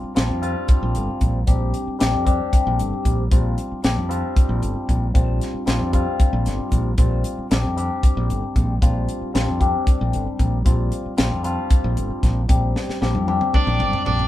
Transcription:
Already playing: G3 C4 D4 F4
0.04 muted fingered electric bass stroke
0.15 A#1 G3 C4 D4 F4, snare, closed hi-hat
0.30 F2
0.41 G3 C4 D4 F4, closed hi-hat
0.68 muted fingered electric bass stroke, kick, closed hi-hat
0.83 A#1
0.95 G1, closed hi-hat
1.10 muted fingered electric bass stroke
1.21 A#1, kick, closed hi-hat
1.47 A#1 G3 C4 D4 G4, kick, closed hi-hat
1.74 closed hi-hat
1.88 muted fingered electric bass stroke
1.99 A#1 G3 C4 D4 G4, snare, closed hi-hat
2.14 F2
2.25 G3 C4 D4 G4, kick, closed hi-hat
2.53 muted fingered electric bass stroke, kick, closed hi-hat
2.67 A#1
2.79 G1, closed hi-hat
2.93 muted fingered electric bass stroke
3.05 A#1, kick, closed hi-hat
3.31 A#1 G3 C4 D4 F4, kick, closed hi-hat
3.58 closed hi-hat
3.72 muted fingered electric bass stroke
3.83 A#1 G3 C4 D4 G4, snare, closed hi-hat
3.98 F2
4.09 G3 C4 D4 F4, closed hi-hat
4.36 muted fingered electric bass stroke, kick, closed hi-hat
4.49 A#1
4.62 G1, closed hi-hat
4.76 muted fingered electric bass stroke
4.89 A#1, kick, closed hi-hat
5.14 A#1 G3 C4 D4 F4, kick, closed hi-hat
5.41 snare, closed hi-hat
5.54 muted fingered electric bass stroke
5.66 A#1 G3 C4 D4 F4, snare, closed hi-hat
5.81 F2
5.92 G3 C4 D4 F4, kick, closed hi-hat
6.20 muted fingered electric bass stroke, kick, closed hi-hat
6.33 A#1
6.46 G1, snare, closed hi-hat
6.59 muted fingered electric bass stroke
6.72 A#1, kick, closed hi-hat
6.98 A#1 G3 C4 D4 F4, kick, closed hi-hat
7.24 closed hi-hat
7.39 muted fingered electric bass stroke
7.50 A#1 G3 C4 D4 G4, snare, closed hi-hat
7.64 F2
7.76 G3 C4 D4 G4, closed hi-hat
8.03 muted fingered electric bass stroke, kick, closed hi-hat
8.17 A#1
8.30 G1, closed hi-hat
8.44 muted fingered electric bass stroke
8.56 A#1, kick, closed hi-hat
8.81 A#1 G3 C4 D4 F4, kick, closed hi-hat
9.09 closed hi-hat
9.22 muted fingered electric bass stroke
9.34 A#1 G3 C4 D4 F4, snare, closed hi-hat
9.48 F2
9.60 G3 C4 D4 G4, kick, closed hi-hat
9.87 muted fingered electric bass stroke, kick, closed hi-hat
10.01 A#1
10.13 G1, closed hi-hat
10.27 muted fingered electric bass stroke
10.39 A#1, kick, closed hi-hat
10.65 A#1 G3 C4 D4 F4, kick, closed hi-hat
10.92 closed hi-hat
11.06 muted fingered electric bass stroke
11.17 A#1 G3 C4 D4 F4, snare, closed hi-hat
11.32 F2
11.43 G3 C4 D4 F4, closed hi-hat
11.70 muted fingered electric bass stroke, kick, closed hi-hat
11.84 A#1
11.97 G1, closed hi-hat
12.10 muted fingered electric bass stroke
12.23 A#1, kick, snare, closed hi-hat
12.48 A#1 G3 C4 D4 G4, kick, closed hi-hat
12.76 snare
12.89 muted fingered electric bass stroke, snare
13.01 A#1 G3 C4 D4 G4, snare
13.15 F2, high tom
13.27 G3 C4 D4 G4, high tom
13.41 mid tom
13.54 D4 D5, muted fingered electric bass stroke, kick, mid tom
13.67 A#1, mid tom
13.80 G1, mid tom
13.93 muted fingered electric bass stroke, floor tom
14.05 A#1 D4 D5, floor tom
14.19 floor tom

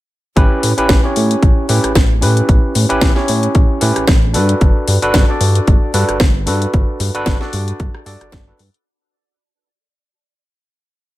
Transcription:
0.36 A1 C#4 E4 G4 B4, kick, closed hi-hat
0.63 A2, open hi-hat
0.77 A1 C#4 E4 G4 B4, closed hi-hat
0.89 A1, kick, snare, closed hi-hat
1.03 C#4 E4 G4 C#5
1.16 A2, open hi-hat
1.31 closed hi-hat
1.43 A1, kick, closed hi-hat
1.69 A2 C#4 E4 G4 B4, open hi-hat
1.84 A1, cross-stick, closed hi-hat
1.95 A1, kick, cross-stick, snare, closed hi-hat
2.21 A2 C#4 E4 G4 B4, open hi-hat
2.37 closed hi-hat
2.49 A1, kick, closed hi-hat
2.75 A2, open hi-hat
2.89 A1 C#4 E4 G4 B4, closed hi-hat
3.01 A1, kick, snare, closed hi-hat
3.15 C#4 E4 G4 C#5, snare
3.28 A2, open hi-hat
3.43 closed hi-hat
3.55 A1, kick, closed hi-hat
3.81 A2 C#4 E4 G4 B4, open hi-hat
3.96 A1, cross-stick, closed hi-hat
4.07 A1, kick, cross-stick, snare, closed hi-hat
4.33 G2 D4 F#4 A4 B4, open hi-hat
4.49 closed hi-hat
4.61 G1, kick, closed hi-hat
4.88 G2, open hi-hat
5.02 G1 D4 F#4 A4 B4, closed hi-hat
5.14 G1, kick, snare, closed hi-hat
5.28 D4 F#4 A4 D5
5.41 G2, open hi-hat
5.55 closed hi-hat
5.67 G1, kick, closed hi-hat
5.94 G2 D4 F#4 A4 B4, open hi-hat
6.09 G1, cross-stick, closed hi-hat
6.20 G1, kick, cross-stick, snare, closed hi-hat
6.46 G2 D4 F#4 A4 B4, open hi-hat
6.62 closed hi-hat
6.74 G1, kick, closed hi-hat
7.00 G2, open hi-hat
7.14 D4 F#4 A4 B4, closed hi-hat
7.26 G1, kick, snare, closed hi-hat
7.40 D4 F#4 A4 D5, snare
7.53 G2, open hi-hat
7.68 closed hi-hat
7.80 G1, kick, closed hi-hat
7.95 cross-stick
8.06 G2 D4 F#4 A4 D5, open hi-hat
8.21 G1, cross-stick, closed hi-hat
8.32 G1, kick, cross-stick, snare, closed hi-hat
8.47 D4 F#4 A4 B4
8.59 G2, open hi-hat
8.74 closed hi-hat

